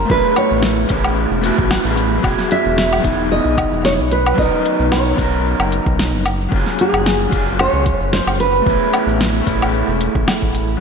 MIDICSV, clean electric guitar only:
0, 0, Header, 1, 2, 480
1, 0, Start_track
1, 0, Tempo, 535714
1, 85, Time_signature, 4, 2, 24, 8
1, 9679, End_track
2, 0, Start_track
2, 0, Title_t, "Clean electric guitar"
2, 0, Program_c, 0, 27
2, 48, Note_on_c, 0, 57, 81
2, 64, Note_on_c, 0, 59, 74
2, 83, Note_on_c, 0, 61, 75
2, 100, Note_on_c, 0, 64, 74
2, 118, Note_on_c, 0, 68, 91
2, 761, Note_off_c, 0, 57, 0
2, 769, Note_off_c, 0, 59, 0
2, 778, Note_off_c, 0, 61, 0
2, 785, Note_on_c, 0, 57, 82
2, 787, Note_off_c, 0, 64, 0
2, 792, Note_on_c, 0, 59, 71
2, 796, Note_off_c, 0, 68, 0
2, 801, Note_on_c, 0, 61, 74
2, 810, Note_on_c, 0, 64, 75
2, 818, Note_on_c, 0, 68, 88
2, 1253, Note_off_c, 0, 57, 0
2, 1257, Note_off_c, 0, 59, 0
2, 1262, Note_off_c, 0, 61, 0
2, 1266, Note_off_c, 0, 64, 0
2, 1267, Note_on_c, 0, 57, 96
2, 1270, Note_off_c, 0, 68, 0
2, 1277, Note_on_c, 0, 59, 84
2, 1286, Note_on_c, 0, 61, 83
2, 1295, Note_on_c, 0, 64, 85
2, 1300, Note_on_c, 0, 66, 104
2, 1616, Note_off_c, 0, 57, 0
2, 1621, Note_off_c, 0, 59, 0
2, 1626, Note_off_c, 0, 61, 0
2, 1630, Note_off_c, 0, 64, 0
2, 1632, Note_on_c, 0, 57, 82
2, 1633, Note_off_c, 0, 66, 0
2, 1642, Note_on_c, 0, 59, 73
2, 1646, Note_on_c, 0, 61, 69
2, 1657, Note_on_c, 0, 64, 72
2, 1665, Note_on_c, 0, 68, 86
2, 1955, Note_off_c, 0, 57, 0
2, 1959, Note_on_c, 0, 54, 84
2, 1968, Note_off_c, 0, 59, 0
2, 1974, Note_off_c, 0, 61, 0
2, 1978, Note_on_c, 0, 59, 73
2, 1979, Note_off_c, 0, 64, 0
2, 1984, Note_off_c, 0, 68, 0
2, 1993, Note_on_c, 0, 66, 78
2, 2008, Note_on_c, 0, 64, 80
2, 2025, Note_on_c, 0, 68, 92
2, 2671, Note_off_c, 0, 54, 0
2, 2681, Note_on_c, 0, 54, 79
2, 2686, Note_off_c, 0, 59, 0
2, 2693, Note_off_c, 0, 66, 0
2, 2697, Note_on_c, 0, 59, 74
2, 2701, Note_off_c, 0, 64, 0
2, 2709, Note_off_c, 0, 68, 0
2, 2716, Note_on_c, 0, 63, 74
2, 2732, Note_on_c, 0, 64, 73
2, 2749, Note_on_c, 0, 68, 88
2, 3650, Note_off_c, 0, 54, 0
2, 3658, Note_off_c, 0, 59, 0
2, 3668, Note_off_c, 0, 63, 0
2, 3676, Note_off_c, 0, 64, 0
2, 3684, Note_off_c, 0, 68, 0
2, 3889, Note_on_c, 0, 54, 77
2, 3903, Note_on_c, 0, 59, 72
2, 3919, Note_on_c, 0, 61, 79
2, 3940, Note_on_c, 0, 63, 78
2, 3957, Note_on_c, 0, 70, 91
2, 4594, Note_off_c, 0, 54, 0
2, 4605, Note_on_c, 0, 54, 80
2, 4608, Note_off_c, 0, 59, 0
2, 4615, Note_off_c, 0, 61, 0
2, 4619, Note_on_c, 0, 59, 74
2, 4627, Note_off_c, 0, 63, 0
2, 4635, Note_off_c, 0, 70, 0
2, 4638, Note_on_c, 0, 61, 73
2, 4652, Note_on_c, 0, 63, 73
2, 4673, Note_on_c, 0, 70, 92
2, 5572, Note_off_c, 0, 54, 0
2, 5579, Note_off_c, 0, 59, 0
2, 5589, Note_off_c, 0, 61, 0
2, 5596, Note_off_c, 0, 63, 0
2, 5606, Note_off_c, 0, 70, 0
2, 5812, Note_on_c, 0, 54, 80
2, 5828, Note_on_c, 0, 58, 81
2, 5839, Note_on_c, 0, 61, 72
2, 5859, Note_on_c, 0, 65, 71
2, 5874, Note_on_c, 0, 68, 94
2, 6518, Note_off_c, 0, 54, 0
2, 6529, Note_on_c, 0, 54, 78
2, 6531, Note_off_c, 0, 58, 0
2, 6536, Note_off_c, 0, 61, 0
2, 6543, Note_on_c, 0, 58, 76
2, 6546, Note_off_c, 0, 65, 0
2, 6553, Note_off_c, 0, 68, 0
2, 6561, Note_on_c, 0, 61, 71
2, 6578, Note_on_c, 0, 65, 74
2, 6592, Note_on_c, 0, 68, 95
2, 7720, Note_off_c, 0, 54, 0
2, 7723, Note_on_c, 0, 57, 79
2, 7728, Note_off_c, 0, 58, 0
2, 7737, Note_off_c, 0, 61, 0
2, 7740, Note_on_c, 0, 59, 80
2, 7746, Note_off_c, 0, 65, 0
2, 7753, Note_off_c, 0, 68, 0
2, 7757, Note_on_c, 0, 61, 76
2, 7777, Note_on_c, 0, 64, 75
2, 7788, Note_on_c, 0, 68, 94
2, 8426, Note_off_c, 0, 57, 0
2, 8433, Note_off_c, 0, 59, 0
2, 8437, Note_on_c, 0, 57, 83
2, 8454, Note_off_c, 0, 68, 0
2, 8455, Note_off_c, 0, 61, 0
2, 8458, Note_on_c, 0, 59, 76
2, 8465, Note_off_c, 0, 64, 0
2, 8470, Note_on_c, 0, 61, 74
2, 8489, Note_on_c, 0, 64, 73
2, 8501, Note_off_c, 0, 59, 0
2, 8505, Note_on_c, 0, 68, 92
2, 9635, Note_off_c, 0, 57, 0
2, 9651, Note_on_c, 0, 54, 82
2, 9652, Note_off_c, 0, 61, 0
2, 9661, Note_off_c, 0, 64, 0
2, 9669, Note_off_c, 0, 68, 0
2, 9679, Note_off_c, 0, 54, 0
2, 9679, End_track
0, 0, End_of_file